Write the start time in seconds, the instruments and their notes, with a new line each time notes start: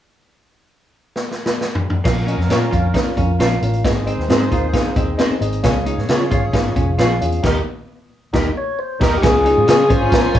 1.16 snare
1.31 snare
1.46 snare
1.61 snare
1.75 floor tom
1.90 floor tom
2.04 fingered electric bass A#1, grand piano A#2 C#4 F4 A#4 F5, hollow-body jazz guitar A#3, horn section C#4 F4 A#4, kick, snare, crash
2.27 hollow-body jazz guitar C#4, grand piano C#4 F4 A#4 D#5, closed hi-hat
2.37 fingered electric bass F2, snare
2.49 fingered electric bass A#2, grand piano C#4 F4 A#4 F5, clean electric guitar C#4 F4 A#4 C#5, snare, closed hi-hat
2.71 fingered electric bass F2, grand piano C#4 F4 A#4 F5, hollow-body jazz guitar F4, kick, closed hi-hat
2.94 grand piano C#4 F4 A#4 F5, hollow-body jazz guitar D#4, kick, snare, closed hi-hat
3.06 muted fingered electric bass stroke
3.17 fingered electric bass F2, grand piano C#4 F4 A#4 F5, hollow-body jazz guitar C#4, kick, closed hi-hat
3.39 fingered electric bass A#1, clean electric guitar C#4 F4 A#4 C#5, grand piano C#4 F4 A#4 F5, hollow-body jazz guitar F4, snare, closed hi-hat
3.62 fingered electric bass A1, grand piano C#4 F4 A#4 F5, closed hi-hat
3.74 closed hi-hat
3.84 fingered electric bass G#1, grand piano G#2 C4 D#4 G#4 D#5, hollow-body jazz guitar A#3, horn section D#4 G#4 C5, kick, snare, closed hi-hat
4.06 grand piano C4 D#4 G#4 D#5, hollow-body jazz guitar C4, closed hi-hat
4.18 fingered electric bass D#2, snare
4.28 fingered electric bass G#2, clean electric guitar C4 D#4 G#4 C5, grand piano C4 D#4 G#4 D#5, snare, closed hi-hat
4.50 fingered electric bass D#2, grand piano C4 D#4 G#4 A#4, hollow-body jazz guitar F4, kick, closed hi-hat
4.73 grand piano C4 D#4 G#4 F5, hollow-body jazz guitar D#4, kick, snare, closed hi-hat
4.86 muted fingered electric bass stroke
4.95 fingered electric bass D#2, grand piano C4 D#4 G#4 D#5, hollow-body jazz guitar C4, kick, closed hi-hat
5.17 grand piano C4 D#4 G#4 D#5, clean electric guitar C4 D#4 G#4 C5, hollow-body jazz guitar C4, snare, closed hi-hat
5.30 muted fingered electric bass stroke
5.40 fingered electric bass G#1, grand piano C4 D#4 G#4 D#5, closed hi-hat
5.52 closed hi-hat
5.63 fingered electric bass C#2, grand piano C#3 C#4 F4 G#4 F5, hollow-body jazz guitar C#4, horn section F4 G#4 C#5, kick, snare, closed hi-hat
5.86 grand piano C#4 F4 G#4 F5, hollow-body jazz guitar D#4, closed hi-hat
5.98 fingered electric bass G#2, snare
6.09 fingered electric bass C#3, grand piano C#4 F4 G#4 F5, clean electric guitar C#4 F4 G#4 C#5, snare, closed hi-hat
6.31 fingered electric bass G#1, grand piano C#4 F4 G#4 F5, hollow-body jazz guitar F4, kick, closed hi-hat
6.53 fingered electric bass G#1, grand piano C#4 F4 G#4 F5, hollow-body jazz guitar D#4, kick, snare, closed hi-hat
6.76 fingered electric bass F1, grand piano C#4 F4 G#4 F5, hollow-body jazz guitar C#4, kick, closed hi-hat
6.98 fingered electric bass A#1, grand piano C#4 F4 G#4 F5, clean electric guitar C#4 F4 G#4 C#5, hollow-body jazz guitar F4, snare, closed hi-hat
7.21 fingered electric bass E2, grand piano C#4 F4 G#4 F5, closed hi-hat
7.32 closed hi-hat
7.43 fingered electric bass D#2, grand piano D#3 D#4 G4 A#4 G5, clean electric guitar D#4 G4 A#4 D#5, horn section D#4 G4 A#4, kick, snare, crash
8.33 fingered electric bass D#2, grand piano D#4 G4 A#4 G5, horn section D#4 G4 A#4, clean electric guitar D#4 G4 A#4 D#5, kick, snare
8.57 tonewheel organ C#5
8.79 tonewheel organ C5
9.00 fingered electric bass D#2, grand piano D#4 G4 A#4 G5, clean electric guitar D#4 G4 A#4 D#5, horn section D#4 G4 A#4, tonewheel organ A#4, kick, snare, crash
9.18 tonewheel organ G4
9.22 fingered electric bass C#2, grand piano C#3 C#4 F4 G#4, hollow-body jazz guitar C#4, violin section C#4 F4 G#5, tonewheel organ G#4, kick, snare, closed hi-hat
9.44 grand piano C#4 F4 G#4, hollow-body jazz guitar D#4, closed hi-hat
9.57 fingered electric bass G#2
9.68 fingered electric bass C#3, grand piano C#4 F4 G#4, clean electric guitar C#4 F4 G#4 C#5, snare, closed hi-hat
9.89 fingered electric bass G#1, hollow-body jazz guitar C#4, grand piano C#4 F4 G#4, tonewheel organ C5, kick, closed hi-hat
10.01 clean electric guitar C#4 F4 G#4 C#5
10.12 grand piano C#4 F4 A#4, kick, snare, closed hi-hat
10.24 muted fingered electric bass stroke
10.33 fingered electric bass G#1, grand piano C#4 F4 A#4, hollow-body jazz guitar F4, kick, closed hi-hat